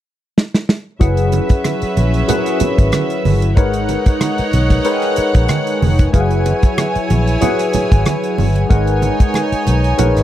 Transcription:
0.38 snare
0.54 snare
0.69 snare
0.99 F#1 F#3 C#4 E4 G#4 B4 E5 F#5, kick, closed hi-hat
1.17 closed hi-hat
1.32 closed hi-hat, muted conga
1.49 muted fingered electric bass stroke, kick, closed hi-hat
1.64 cross-stick, closed hi-hat, high conga
1.82 muted fingered electric bass stroke, closed hi-hat
1.97 A#1, closed hi-hat, muted conga
2.14 closed hi-hat
2.28 F#3 E4 G#4 A#4 F#5, closed hi-hat, low conga
2.35 B4
2.46 cross-stick, closed hi-hat
2.60 muted fingered electric bass stroke, closed hi-hat, muted conga, low conga
2.78 G#1, kick, closed hi-hat
2.92 cross-stick, closed hi-hat, high conga
3.10 closed hi-hat
3.25 G1, open hi-hat, high conga
3.42 closed hi-hat
3.56 G#1 G#3 D#4 A#4 B4 C#5 F#5, kick, closed hi-hat
3.73 closed hi-hat
3.89 closed hi-hat, muted conga
4.06 muted fingered electric bass stroke, kick, closed hi-hat
4.21 cross-stick, closed hi-hat, high conga
4.38 muted fingered electric bass stroke, closed hi-hat
4.53 B1, closed hi-hat, muted conga
4.70 kick, closed hi-hat
4.84 G#3 D#4 A#4 B4 C#5 G5, closed hi-hat
4.92 G#5
5.02 cross-stick, closed hi-hat
5.16 muted fingered electric bass stroke, closed hi-hat
5.34 A#1, kick, closed hi-hat
5.48 cross-stick, closed hi-hat, high conga
5.67 closed hi-hat
5.82 F1, open hi-hat, high conga
5.99 kick, closed hi-hat
6.13 F#1 F#3 E4 G#4 B4 C#5 F5 G#5, kick, closed hi-hat
6.20 F#5
6.31 closed hi-hat
6.46 closed hi-hat, muted conga
6.63 muted fingered electric bass stroke, kick, closed hi-hat
6.78 cross-stick, closed hi-hat, high conga
6.95 muted fingered electric bass stroke, closed hi-hat
7.10 A#1, cross-stick, closed hi-hat, muted conga
7.27 closed hi-hat
7.41 F#3 E4 G#4 B4 F#5, closed hi-hat, low conga
7.59 cross-stick, closed hi-hat
7.73 muted fingered electric bass stroke, closed hi-hat, muted conga, low conga
7.92 G#1, kick, closed hi-hat
8.06 cross-stick, closed hi-hat, high conga
8.24 closed hi-hat
8.38 G1, open hi-hat, high conga
8.56 closed hi-hat
8.69 G#1 G#3 D#4 A#4 B4 C#5 F#5 G#5, kick, closed hi-hat
8.87 closed hi-hat
9.02 closed hi-hat, muted conga
9.20 muted fingered electric bass stroke, kick, closed hi-hat
9.34 cross-stick, closed hi-hat, high conga
9.52 muted fingered electric bass stroke, closed hi-hat
9.67 B1, closed hi-hat, muted conga
9.84 closed hi-hat
9.98 A#1 G#3 D#4 A#4 B4 C#5 F#5, closed hi-hat, low conga
10.17 G#1, cross-stick, closed hi-hat

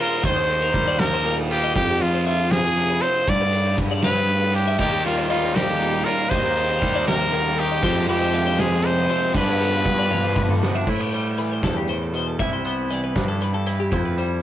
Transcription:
Already playing: A#2 D#3 G3 C4
0.00 F4 A#4 C5
0.23 D#2 D#3 C5 D#5, kick, ride
0.37 C5
0.49 A4, ride
0.62 A#4
0.73 D#2 G3, kick, ride
0.88 D5
0.99 D#2 A#4 F5, snare, ride
1.13 C5
1.25 A#2 A#4, ride
1.39 A4
1.51 F4 G4 A#4, ride
1.64 D#5
1.75 F2 G4 C5, kick, ride
1.89 G4
2.01 F2 F4 B4, ride
2.14 C5
2.26 F3 F4 E5, ride
2.40 C5
2.51 G#4 B4, snare, ride
2.65 G#4
2.76 C3, ride
2.90 B4
3.02 C4 C5, ride
3.27 G2 D5, kick, ride
3.42 B4
3.53 A4, ride
3.66 B4
3.78 G2 D3, kick, ride
3.91 D5
4.02 G2 B4 F5, snare, ride
4.17 C5
4.28 G2 B4, ride
4.43 A4
4.54 D4 G4 B4, ride
4.67 E5
4.78 D#2 D#3 G3 A#3 D#4 G4 A#4, kick, crash
4.93 G4
5.05 D#2 F4 A#4, ride
5.18 C5
5.30 G3 F4 D#5, ride
5.43 C5
5.55 G4 A#4, snare, ride
5.68 A4
5.80 A#2, ride
5.94 A#4
6.05 F4 A#4 C5, ride
6.30 D#2 D#3 G3 A#3 C5 D#5, kick, ride
6.34 D#4
6.44 C5
6.57 A4, ride
6.70 A#4
6.81 D#2 G3, kick, ride
6.96 D5
7.07 D#2 C3 A#4 F5, snare, ride
7.20 C5
7.33 D3 A#4, ride
7.47 A4
7.58 D#3 G4 A#4, ride
7.71 D#5
7.82 F2 C3 F3 G#3 C4 C5, kick, ride
7.97 G4
8.08 F2 G4 B4, ride
8.22 C5
8.33 F3 E5, ride
8.47 C5
8.58 G#4 B4, snare, ride
8.73 G#4
8.83 C3 C5, ride
8.98 B4
9.09 C4 C5, ride
9.34 G2 D3 F3 B3 D4 B4 D5, kick, ride
9.49 B4
9.60 A4, ride
9.74 B4
9.85 G2 D3, kick, ride
9.99 D5
10.11 G2 F5, high tom
10.24 C5
10.36 G2 B4, kick
10.49 A4, mid tom
10.63 B3 B4, snare
10.75 D4 E5
10.87 A2 E4 C5, kick, crash
11.00 G4 B4
11.12 G3 C5, closed hi-hat
11.38 E3 B4, closed hi-hat
11.52 C5
11.63 E2 G2 A4, kick, snare, closed hi-hat
11.77 G4
11.88 A2 C5, closed hi-hat
12.03 A4
12.13 B2 C5, closed hi-hat
12.28 A4
12.39 C2 C3 E4 E5, kick, closed hi-hat
12.53 C5
12.65 B3 C5, closed hi-hat
12.89 E3 D5, closed hi-hat
13.04 B4
13.16 G2 D4, kick, snare, closed hi-hat
13.28 A4
13.40 G2 B4, closed hi-hat
13.54 A4
13.66 E4 B4, closed hi-hat
13.80 G4
13.91 F2 E4 C5, kick, closed hi-hat
14.05 B4
14.17 G3 C5, closed hi-hat

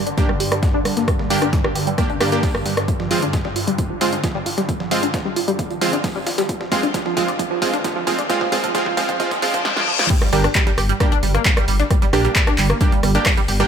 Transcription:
Already playing: G2 D3
0.07 D4, closed hi-hat
0.18 G3 A#3 D4 G4, kick, closed hi-hat
0.29 G3, cross-stick
0.40 G4, closed hi-hat, open hi-hat
0.52 G3, cross-stick, closed hi-hat
0.63 G3, kick, snare, closed hi-hat
0.74 D4
0.85 G3, cross-stick, closed hi-hat, open hi-hat
0.97 A#3, snare, closed hi-hat
1.08 G3, kick, cross-stick, closed hi-hat
1.19 G3, snare
1.30 G3 A#3 D4 G4, closed hi-hat, open hi-hat
1.42 D4, cross-stick, closed hi-hat
1.53 G3, kick, snare, closed hi-hat
1.64 G3, cross-stick
1.75 G4, closed hi-hat, open hi-hat
1.87 G3, closed hi-hat
1.98 G3 A#3 D4 G4, kick, cross-stick, closed hi-hat
2.10 D4, closed hi-hat
2.21 G3 A#3 D4 G4, cross-stick, closed hi-hat, open hi-hat
2.32 A#3 D4 G4, closed hi-hat
2.43 G3, kick, snare, closed hi-hat, open hi-hat
2.55 G3, cross-stick
2.66 G3, snare, closed hi-hat, open hi-hat
2.77 D4, cross-stick, snare, closed hi-hat
2.88 F3, kick, closed hi-hat, riser
3.00 F3, snare
3.11 F3 G#3 C4 F4, closed hi-hat, open hi-hat
3.22 D4, closed hi-hat
3.33 F3, kick, snare, closed hi-hat
3.45 G3, snare
3.56 F4, closed hi-hat, open hi-hat
3.67 G3, closed hi-hat
3.78 F3, kick, closed hi-hat
3.90 F3
4.01 F3 G#3 C4 F4, closed hi-hat, open hi-hat
4.13 D4, closed hi-hat
4.24 F3, kick, snare, closed hi-hat
4.35 G3
4.46 F4, closed hi-hat, open hi-hat
4.58 G3, snare, closed hi-hat
4.69 F3, kick, closed hi-hat
4.80 F3, snare
4.91 F3 G#3 C4 F4, closed hi-hat, open hi-hat
5.03 D4, closed hi-hat
5.14 F3, kick, snare, closed hi-hat
5.25 G3
5.36 F4, closed hi-hat, open hi-hat
5.48 G3, closed hi-hat
5.59 F3, kick, closed hi-hat
5.70 F3, closed hi-hat
5.81 F3 G#3 C4 F4, closed hi-hat, open hi-hat
5.93 D4, closed hi-hat
6.04 F3, kick, snare, closed hi-hat, open hi-hat
6.16 G3
6.26 F4, snare, closed hi-hat, open hi-hat
6.38 G3, snare, closed hi-hat
6.49 F3, kick, closed hi-hat
6.61 F3, snare
6.72 F3 G#3 C4 F4, kick, closed hi-hat, open hi-hat
6.83 D4, closed hi-hat
6.94 F3, kick, snare, closed hi-hat
7.06 F3, snare
7.17 F3 G#3 C4 F4, kick, closed hi-hat, open hi-hat
7.28 D4, closed hi-hat
7.39 F3, kick, closed hi-hat
7.51 F3
7.62 F3 G#3 C4 F4, kick, closed hi-hat, open hi-hat
7.73 D4, closed hi-hat
7.84 F3, kick, snare, closed hi-hat
7.96 F3
8.07 F3 G#3 C4 F4, kick, closed hi-hat, open hi-hat
8.19 D4, snare, closed hi-hat
8.30 F3 G#3 C4 F4, kick, closed hi-hat
8.41 F3, kick, snare
8.52 F3 G#3 C4 F4, kick, closed hi-hat, open hi-hat
8.64 F3, kick, closed hi-hat
8.75 F3 G#3 C4 F4, kick, snare, closed hi-hat
8.86 F3, kick
8.97 F3 G#3 C4 F4, kick, snare, closed hi-hat, open hi-hat
9.09 F3, kick, closed hi-hat
9.20 F3 G#3 C4 F4, kick, closed hi-hat, reverse cymbal
9.31 F3, kick, snare, closed hi-hat
9.42 F3 G#3 C4 F4, kick, open hi-hat
9.54 F3, kick, closed hi-hat
9.65 F3, snare
9.77 F3, snare
9.88 F3
9.99 F3, snare
10.10 G3, kick, closed hi-hat, crash
10.22 G3, cross-stick, snare, closed hi-hat
10.33 G1 G3 A#3 D4 G4, closed hi-hat, open hi-hat
10.44 D4, cross-stick, closed hi-hat
10.55 G3, kick, snare, clap, closed hi-hat
10.67 G3, snare, closed hi-hat
10.78 G1 G4, cross-stick, closed hi-hat, open hi-hat
10.89 G3, closed hi-hat
11.00 G3 A#3 D4 G4, kick, cross-stick, closed hi-hat
11.12 D4, closed hi-hat
11.23 G1 G3, closed hi-hat, open hi-hat
11.34 A#3, cross-stick, closed hi-hat
11.45 G3, kick, snare, clap, closed hi-hat
11.57 G3, cross-stick, closed hi-hat
11.68 G1 G3, closed hi-hat, open hi-hat
11.80 D4, snare, closed hi-hat
11.90 G3, kick, cross-stick, closed hi-hat
12.02 G3, snare, closed hi-hat
12.13 A#1 A#3 D4 G4, cross-stick, closed hi-hat, open hi-hat
12.25 G3, closed hi-hat
12.36 G3, kick, snare, clap, closed hi-hat
12.47 D4, cross-stick, closed hi-hat
12.58 G1 G3, clap, closed hi-hat, open hi-hat
12.70 A#3, cross-stick, closed hi-hat
12.81 G3 A#3 D4 G4, kick, closed hi-hat
12.92 G3, closed hi-hat
13.03 G1 G3, cross-stick, closed hi-hat, open hi-hat
13.15 A#3 D4 G4, closed hi-hat
13.26 G3, kick, cross-stick, snare, clap, closed hi-hat, open hi-hat
13.37 G3, closed hi-hat
13.48 G1 G4, snare, closed hi-hat, open hi-hat
13.60 G3 A#3 D4 G4, cross-stick, snare, closed hi-hat

